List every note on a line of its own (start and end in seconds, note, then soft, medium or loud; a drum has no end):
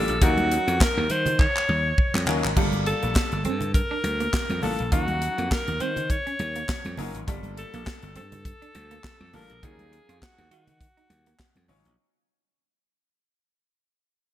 0.00 0.12 G3 medium
0.00 0.12 A#3 medium
0.00 0.12 D4 medium
0.00 0.12 F4 medium
0.00 0.12 G4 medium
0.00 0.24 A4 loud
0.08 0.18 A#1 medium
0.08 closed hi-hat medium
0.22 0.57 D#2 medium
0.22 0.95 F#3 medium
0.22 0.95 C#4 medium
0.22 0.95 D#4 medium
0.22 0.83 F#4 loud
0.22 0.95 A#4 medium
0.22 0.95 F5 medium
0.22 kick loud
0.22 closed hi-hat loud
0.22 muted conga soft
0.22 low conga medium
0.38 closed hi-hat soft
0.38 high conga medium
0.51 closed hi-hat medium
0.51 muted conga soft
0.67 0.77 F2 loud
0.67 closed hi-hat medium
0.80 1.13 A#4 loud
0.80 kick loud
0.80 snare loud
0.80 clap medium
0.80 muted conga soft
0.97 1.07 D#2 loud
1.10 1.45 D#3 loud
1.10 1.40 C5 loud
1.10 closed hi-hat medium
1.10 muted conga soft
1.10 high conga soft
1.26 closed hi-hat medium
1.26 low conga medium
1.39 2.24 C#5 loud
1.39 kick loud
1.39 clap medium
1.39 muted conga soft
1.56 clap medium
1.69 1.91 D#2 loud
1.69 high conga medium
1.98 kick loud
1.98 muted conga soft
2.14 2.25 F2 medium
2.14 clap medium
2.14 high conga medium
2.26 2.40 D#2 medium
2.26 2.47 F#3 medium
2.26 2.47 C#4 medium
2.26 2.47 D#4 medium
2.26 2.47 F4 medium
2.26 2.47 A#4 loud
2.26 clap loud
2.26 muted conga soft
2.26 low conga medium
2.44 2.54 G#1 medium
2.44 clap medium
2.57 2.92 G1 loud
2.57 3.30 G3 medium
2.57 2.66 G3 medium
2.57 3.30 A#3 medium
2.57 3.30 D4 medium
2.57 3.30 F4 medium
2.57 3.30 A4 loud
2.57 kick loud
2.57 crash medium
2.57 low conga medium
2.72 closed hi-hat soft
2.72 high conga medium
2.86 3.41 A4 medium
2.86 muted clean electric guitar stroke medium
2.86 closed hi-hat medium
3.03 3.13 A#1 medium
3.03 3.10 A#3 medium
3.03 closed hi-hat soft
3.14 kick loud
3.14 snare loud
3.14 clap medium
3.14 muted conga soft
3.32 3.47 G1 loud
3.32 closed hi-hat soft
3.44 3.80 G2 loud
3.44 3.55 C4 medium
3.44 3.73 A4 medium
3.44 closed hi-hat medium
3.44 muted conga soft
3.44 high conga soft
3.61 closed hi-hat medium
3.61 low conga medium
3.74 4.64 A#4 loud
3.74 kick loud
3.74 closed hi-hat medium
3.91 3.98 D4 medium
4.04 4.26 D2 loud
4.04 muted clean electric guitar stroke soft
4.04 closed hi-hat medium
4.04 muted conga soft
4.04 high conga medium
4.20 4.28 A#3 medium
4.20 closed hi-hat medium
4.33 kick loud
4.33 snare loud
4.33 clap medium
4.49 4.60 F2 medium
4.49 closed hi-hat soft
4.49 high conga medium
4.62 4.76 A1 medium
4.62 4.82 G3 medium
4.62 4.82 A#3 medium
4.62 4.72 A#3 medium
4.62 4.82 D4 medium
4.62 4.82 F4 medium
4.62 4.92 A4 medium
4.62 4.82 A4 medium
4.62 open hi-hat medium
4.62 low conga medium
4.79 4.89 A#1 loud
4.79 closed hi-hat medium
4.91 5.27 D#2 loud
4.91 5.65 F#3 medium
4.91 5.65 C#4 medium
4.91 5.65 D#4 medium
4.91 5.02 D#4 medium
4.91 5.53 F#4 loud
4.91 5.65 A#4 medium
4.91 5.65 F5 medium
4.91 kick loud
4.91 closed hi-hat loud
4.91 muted conga soft
4.91 low conga medium
5.08 closed hi-hat soft
5.08 high conga medium
5.22 muted clean electric guitar stroke soft
5.22 closed hi-hat medium
5.38 5.48 F2 medium
5.38 5.45 A#3 medium
5.38 closed hi-hat soft
5.51 5.83 A#4 loud
5.51 kick loud
5.51 snare loud
5.51 clap medium
5.68 5.78 D#2 medium
5.68 closed hi-hat soft
5.80 6.15 D#3 loud
5.80 5.90 C4 medium
5.80 6.12 C5 loud
5.80 closed hi-hat medium
5.80 muted conga soft
5.80 high conga soft
5.96 closed hi-hat medium
5.96 low conga medium
6.10 6.99 C#5 loud
6.10 kick loud
6.10 closed hi-hat medium
6.10 muted conga soft
6.27 6.34 C#4 medium
6.27 closed hi-hat soft
6.39 6.62 D#2 loud
6.39 muted clean electric guitar stroke soft
6.39 closed hi-hat medium
6.39 muted conga soft
6.39 high conga medium
6.56 6.63 A#3 medium
6.56 closed hi-hat medium
6.69 kick loud
6.69 snare loud
6.69 clap medium
6.85 6.95 F2 medium
6.85 closed hi-hat soft
6.85 high conga medium
6.97 7.11 F#1 medium
6.97 7.17 F#3 loud
6.97 7.08 A#3 medium
6.97 7.17 C#4 medium
6.97 7.17 D#4 medium
6.97 7.17 F4 medium
6.97 7.18 A#4 loud
6.97 open hi-hat medium
6.97 muted conga soft
6.97 low conga medium
7.15 7.24 G#1 loud
7.15 closed hi-hat medium
7.27 7.63 G1 loud
7.27 8.00 G3 loud
7.27 7.37 G3 medium
7.27 8.00 A#3 medium
7.27 8.01 D4 medium
7.27 8.01 F4 medium
7.27 8.01 A4 loud
7.27 kick loud
7.27 closed hi-hat loud
7.27 muted conga soft
7.27 low conga medium
7.43 closed hi-hat soft
7.43 high conga medium
7.57 8.13 A4 medium
7.57 muted clean electric guitar stroke soft
7.57 closed hi-hat medium
7.74 7.83 A#1 medium
7.74 7.81 A#3 medium
7.74 closed hi-hat soft
7.85 kick loud
7.85 snare loud
7.85 clap medium
7.85 muted conga soft
8.02 8.17 G1 loud
8.02 closed hi-hat soft
8.16 8.50 G2 loud
8.16 8.25 C4 medium
8.16 9.37 A4 loud
8.16 closed hi-hat medium
8.16 muted conga soft
8.16 high conga soft
8.32 closed hi-hat medium
8.32 low conga medium
8.45 kick loud
8.45 closed hi-hat medium
8.45 muted conga soft
8.62 8.69 D4 medium
8.62 closed hi-hat soft
8.75 8.97 D2 loud
8.75 muted clean electric guitar stroke soft
8.75 closed hi-hat medium
8.75 muted conga soft
8.75 high conga medium
8.91 8.99 A#3 medium
8.91 closed hi-hat medium
9.04 kick loud
9.04 snare loud
9.04 clap medium
9.04 muted conga soft
9.20 9.30 F2 medium
9.20 high conga medium
9.33 9.46 A1 medium
9.33 9.53 G3 medium
9.33 9.53 A#3 medium
9.33 9.43 A#3 medium
9.33 9.53 D4 medium
9.33 9.53 F4 medium
9.33 9.53 A4 medium
9.33 9.66 A#4 loud
9.33 open hi-hat medium
9.33 muted conga soft
9.33 low conga medium
9.50 9.60 A#1 medium
9.50 closed hi-hat medium
9.63 9.98 D#2 loud
9.63 10.36 F#3 medium
9.63 10.36 C#4 medium
9.63 10.36 D#4 medium
9.63 9.72 D#4 medium
9.63 10.36 F4 medium
9.63 10.25 G#4 loud
9.63 10.36 A#4 medium
9.63 kick loud
9.63 closed hi-hat loud
9.63 muted conga soft
9.63 low conga medium
9.79 closed hi-hat soft
9.79 high conga medium
9.92 muted clean electric guitar stroke soft
9.92 closed hi-hat medium
9.92 muted conga soft
10.09 10.19 F2 medium
10.09 10.16 F4 medium
10.09 closed hi-hat soft
10.22 10.52 F#4 loud
10.22 kick loud
10.22 snare loud
10.22 clap medium
10.38 10.48 D#2 loud
10.38 closed hi-hat soft
10.51 10.86 D#3 medium
10.51 10.61 F#4 medium
10.51 11.65 F#4 medium
10.51 closed hi-hat medium
10.51 high conga soft
10.67 closed hi-hat medium
10.67 low conga medium
10.81 kick loud
10.81 closed hi-hat loud
10.81 muted conga soft
10.97 11.05 D#4 medium
10.97 closed hi-hat soft
11.10 11.32 D#2 medium
11.10 muted clean electric guitar stroke soft
11.10 closed hi-hat medium
11.10 high conga medium
11.26 11.34 A#3 medium
11.26 closed hi-hat medium
11.39 kick loud
11.39 snare loud
11.39 clap medium
11.39 muted conga soft
11.56 11.66 F2 medium
11.56 closed hi-hat soft
11.56 high conga medium
11.68 11.81 G#1 medium
11.68 11.88 F#3 medium
11.68 11.88 C#4 medium
11.68 11.78 C#4 medium
11.68 11.88 D#4 medium
11.68 11.88 F4 medium
11.68 11.88 C#5 loud
11.68 open hi-hat medium
11.68 muted conga soft
11.68 low conga medium
11.85 11.95 A#1 medium
11.85 closed hi-hat medium